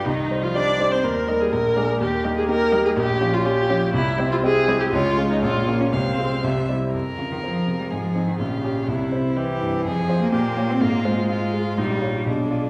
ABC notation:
X:1
M:2/4
L:1/16
Q:1/4=123
K:Eb
V:1 name="Violin"
E3 F d3 c | z2 e2 z2 d2 | z2 e2 z2 e2 | [K:Fm] z2 d2 z2 d2 |
z2 c2 z2 c2 | d4 d4 | f4 =e2 z2 | B8 |
A4 F4 | =E4 G4 | A4 G4 | F4 F4 |
E4 =D4 |]
V:2 name="Viola"
E3 F d3 c | B3 A B4 | G3 A B3 A | [K:Fm] G3 F G4 |
=E3 F A3 G | F3 E F3 D | C6 z2 | A8- |
A4 G4 | =E8 | A4 F4 | F8- |
F4 ^G4 |]
V:3 name="Grand piano"
C,,2 [G,Ec]2 [G,Ec]2 [G,Ec]2 | E,,2 [G,EB]2 B,,,2 [B,DA]2 | E,,2 [B,EG]2 [B,EG]2 [B,EG]2 | [K:Fm] B,,,2 [DFG]2 [DFG]2 [DFG]2 |
C,,2 [C=EG]2 [CEG]2 [CEG]2 | D,,2 [A,DF]2 B,,,2 [B,DF]2 | C,,2 [A,CF]2 C,,2 [G,C=E]2 | F,,2 F2 C2 C,2 |
A,,2 [CE]2 B,,,2 [DG]2 | C,,2 c2 =E2 G,,2 | F,,2 [Fc]2 B,,2 [Fd]2 | A,,2 c2 F2 A,2 |
B,,,2 [Fd]2 =B,,,2 [F=d]2 |]
V:4 name="Cello" clef=bass
E,3 F, D3 C | z2 G,2 z2 A,2 | z2 G,2 z2 G,2 | [K:Fm] z2 F,2 z2 F,2 |
z2 G,2 z2 G,2 | A,4 B,4 | A,4 G,2 z2 | z2 D, E, F,3 G, |
F,3 E, D,4 | C,4 =E,4 | F,3 B, B,3 C | B,2 A,6 |
G,4 z4 |]